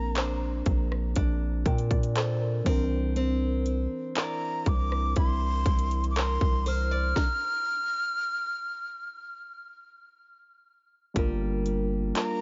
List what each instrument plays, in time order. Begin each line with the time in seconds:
Already playing: 808-style bass A#1, synth keys A#3 C4 D4 A#4, nylon-string guitar A#3 D4 F4, flute A#5
0.16 nylon-string guitar D4 C5, clap, closed hi-hat
0.66 808-style bass A#1, kick, closed hi-hat
0.92 cross-stick
1.16 808-style bass A#1, nylon-string guitar D4, kick, closed hi-hat
1.66 808-style bass A#2, nylon-string guitar D4, synth keys A#4, synth pluck G5, kick, closed hi-hat
1.78 closed hi-hat
1.91 synth keys D5, kick, closed hi-hat
2.03 closed hi-hat
2.16 nylon-string guitar A4, synth keys C5, clap, closed hi-hat
2.41 synth keys A#4
2.64 808-style bass C2, synth keys E3 C4 D4, nylon-string guitar C4, kick, open hi-hat
2.69 synth keys A#4
3.16 nylon-string guitar C4, closed hi-hat
3.66 closed hi-hat
4.16 nylon-string guitar E4 A#4 D5, flute A#5, clap, closed hi-hat
4.66 808-style bass C2, flute D6, kick, closed hi-hat
4.92 cross-stick
5.16 808-style bass C2, nylon-string guitar E4, flute C6, kick, closed hi-hat
5.66 808-style bass C2, nylon-string guitar E4, kick, closed hi-hat
5.79 closed hi-hat
5.91 closed hi-hat
6.04 closed hi-hat
6.11 flute D6
6.16 nylon-string guitar A#4, flute C6, clap, closed hi-hat
6.41 808-style bass C2, kick
6.66 nylon-string guitar C5, flute F6, open hi-hat
6.91 nylon-string guitar D5
7.16 synth pluck A#5, kick, snare
11.14 808-style bass G1, synth keys G3 A#3 D4 F4, nylon-string guitar G3, kick, closed hi-hat
11.18 synth keys A#4
11.66 closed hi-hat
12.16 nylon-string guitar F4 A#4 D5, flute A#5, clap, closed hi-hat